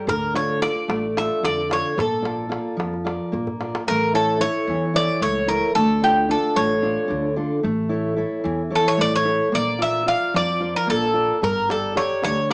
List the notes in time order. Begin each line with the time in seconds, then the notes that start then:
0.07 D2 D3 A#4, darbuka dum
0.34 D4 F4 A4 C#5, darbuka tek
0.49 darbuka tek
0.61 D4 F4 A4 D5, darbuka tek
0.76 darbuka tek
0.88 A1 A3, darbuka tek
1.17 D4 F4 A4 E5, darbuka tek
1.43 F2 D3 D5, darbuka tek
1.58 darbuka tek
1.69 D4 F4 A4 C#5, darbuka tek
1.97 A#1 A#3 A4, darbuka dum
2.13 darbuka tek
2.22 A#3 F4 D5, darbuka tek
2.49 A#3 F4 D5, darbuka tek
2.77 F2 F3, darbuka tek
2.94 darbuka tek
3.05 F4 A#4 D5, darbuka tek
3.32 A#1 A#3, darbuka dum
3.47 darbuka dum
3.60 F4 A#4 D5, darbuka tek
3.75 darbuka tek
3.87 A1 A3 A#4
4.13 E4 A4 C#5
4.40 E4 A4 C#5
4.67 E2 E3
4.94 E4 A4 C#5 D5
5.21 C#2 A3 C#5
5.47 E4 A4 A#4 C#5
5.75 D2 D3 A4
6.02 D4 F4 G4 A4
6.29 D4 F4 A4
6.56 A1 A3 C#5
6.82 D4 F4 A4
7.08 D2 D3
7.36 D4 F4 A4
7.63 A1 A3
7.89 E4 A4 C#5
8.16 E4 A4 C#5
8.44 E2 E3
8.70 E4 A4 C#5
8.75 A4
8.88 C#5
8.97 A1 A3 D5
9.16 C#5
9.25 E4 A4 C#5
9.52 A#1 A#3 D5
9.79 F4 A#4 D5 E5
10.06 F4 A#4 D5 F5
10.34 F2 F3 D5
10.60 F4 A#4 D5
10.76 A#4
10.87 A#1 A#3 A4
11.14 F4 A#4 D5
11.42 G1 G3 A#4, darbuka dum
11.57 darbuka tek
11.69 G4 A4 A#4 D5, darbuka tek
11.95 G4 A#4 C#5 D5, darbuka tek
12.11 darbuka tek
12.22 D2 D3 C#5, darbuka tek
12.50 G4 A#4